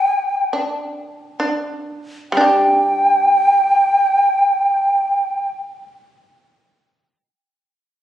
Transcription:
Already playing: shamisen C4, shakuhachi G5
0.53 shamisen D4
1.40 shamisen D4
2.32 shamisen G3, shakuhachi G5
2.37 shamisen D4 G4

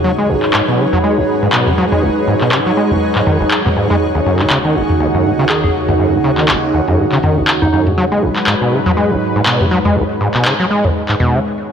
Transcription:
Already playing: ambient pad D#4 G#4 C#5 F#5
0.04 analog synth pad G#2 F#3 B4, acid bass F#3
0.18 acid bass G#3
0.29 acid bass G#1
0.42 clap
0.53 acid bass G#2, clap
0.68 acid bass B2
0.79 acid bass C#3
0.93 acid bass F#3, mid tom
1.04 acid bass G#3
1.18 acid bass G#1
1.42 acid bass G#2
1.52 acid bass B2, clap
1.67 acid bass C#3, mid tom
1.78 acid bass F#3
1.92 acid bass G#3, mid tom
2.03 acid bass G#1
2.27 acid bass G#2
2.41 acid bass B2, clap
2.52 acid bass C#3, clap
2.66 acid bass F#3
2.77 acid bass G#3
2.91 acid bass G#1, mid tom
3.15 acid bass G#2, clap
3.26 acid bass D#3, mid tom
3.41 acid bass G#1
3.51 clap
3.65 acid bass B2, mid tom
3.76 acid bass G#2
3.90 acid bass G#3, mid tom
4.01 analog synth pad D#2 C#3 F#4
4.15 acid bass D#2
4.26 acid bass F#2
4.39 acid bass G#2, clap
4.50 acid bass C#3, clap
4.65 acid bass D#3
4.75 acid bass D#1
4.89 mid tom
5.00 acid bass D#2
5.14 acid bass F#2
5.25 acid bass G#2
5.39 acid bass C#3
5.49 acid bass D#3, soft synth lead G#4, clap
5.64 acid bass D#1, soft synth lead G#4, mid tom
5.88 acid bass D#2, mid tom
5.99 acid bass F#2
6.13 acid bass G#2
6.24 acid bass C#3
6.38 acid bass D#3, clap
6.48 acid bass D#1, clap
6.74 acid bass D#2
6.88 acid bass F#2, mid tom
6.98 acid bass G#2
7.12 acid bass C#3, clap
7.23 acid bass D#3, mid tom
7.37 acid bass D#1
7.47 clap
7.62 acid bass D#2, soft synth lead D#4, mid tom
7.73 acid bass F#2, soft synth lead D#4
7.87 acid bass G#2, mid tom
7.98 analog synth pad G#2 F#3 B4, acid bass F#3
8.12 acid bass G#3
8.22 acid bass G#1
8.36 clap
8.47 acid bass G#2, clap
8.61 acid bass B2
8.72 acid bass C#3
8.86 acid bass F#3, mid tom
8.97 acid bass G#3
9.11 acid bass G#1
9.36 acid bass G#2
9.46 acid bass B2, clap
9.60 acid bass C#3, mid tom
9.71 acid bass F#3
9.85 acid bass G#3, mid tom
9.96 acid bass G#1, analog synth pad G#3
10.21 acid bass G#2
10.34 acid bass B2, clap
10.45 acid bass C#3, clap
10.60 acid bass F#3
10.70 acid bass G#3
10.84 acid bass G#1, mid tom
11.09 acid bass G#2, clap
11.20 acid bass B2, mid tom
11.34 acid bass C#3

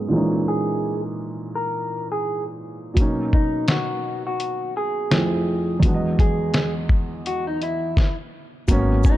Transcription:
Already playing: felt piano G#2 F#3 A#3 B3 C#4 D#4
0.08 felt piano A#2 E3 G#3
0.13 felt piano A#3 C#4 D#4
0.48 clean electric guitar G#4
1.55 clean electric guitar A#4
2.12 clean electric guitar G#4
2.94 felt piano B2 F#3 A#3, kick, closed hi-hat
3.00 felt piano C#4 D#4
3.33 clean electric guitar D#4, kick
3.68 clean electric guitar F#4, snare, closed hi-hat
4.27 clean electric guitar F#4
4.40 closed hi-hat
4.77 clean electric guitar G#4
5.11 felt piano F2 F3 A3 C4 E4, snare, closed hi-hat
5.80 felt piano E2 F#3, kick, closed hi-hat
5.84 felt piano G#3 B3 D4
5.94 felt piano D#5
6.19 clean electric guitar G#4, kick, closed hi-hat
6.54 snare, closed hi-hat
6.89 kick
7.26 clean electric guitar F#4, closed hi-hat
7.47 clean electric guitar D#4
7.62 clean electric guitar E4, closed hi-hat
7.97 kick, snare
8.68 upright bass G#1, felt piano F#3 A#3 B3 C#4, kick, closed hi-hat, shaker
9.03 kick, shaker
9.05 clean electric guitar D#4, shaker

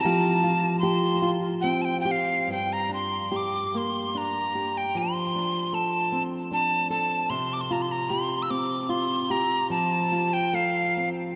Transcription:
Already playing: nylon-string guitar C4 E4
0.01 nylon-string guitar F3, tin whistle A5
0.05 nylon-string guitar G4
0.44 nylon-string guitar F4
0.79 nylon-string guitar G4, tin whistle C6
1.22 nylon-string guitar F4
1.61 nylon-string guitar C4, tin whistle G5
1.82 tin whistle G5 A5
2.01 tin whistle G5
2.05 nylon-string guitar G4
2.11 tin whistle F5
2.47 nylon-string guitar G2
2.52 tin whistle G5
2.73 tin whistle A#5
2.89 nylon-string guitar D4
2.94 tin whistle C6
3.32 nylon-string guitar G4
3.36 tin whistle D6
3.74 nylon-string guitar A#3, tin whistle C6
4.15 nylon-string guitar D4, tin whistle A#5
4.55 nylon-string guitar G4
4.78 tin whistle G5
4.95 nylon-string guitar F3, tin whistle C6
5.35 nylon-string guitar D4
5.73 nylon-string guitar A4, tin whistle A5
6.12 nylon-string guitar C4
6.51 nylon-string guitar D4, tin whistle A5
6.90 nylon-string guitar A4, tin whistle A5
7.30 nylon-string guitar C3, tin whistle C6
7.53 tin whistle D6
7.61 tin whistle C6
7.71 nylon-string guitar F4, tin whistle A#5
7.82 tin whistle C6
7.92 tin whistle A#5
8.10 nylon-string guitar G4, tin whistle C6
8.42 tin whistle E6
8.50 nylon-string guitar C4, tin whistle D6
8.83 tin whistle D6
8.89 nylon-string guitar F4, tin whistle C6
9.30 nylon-string guitar G4, tin whistle A#5
9.70 nylon-string guitar F3, tin whistle A5
10.12 nylon-string guitar F4
10.33 tin whistle G5
10.53 nylon-string guitar A4, tin whistle F5
10.97 nylon-string guitar C4

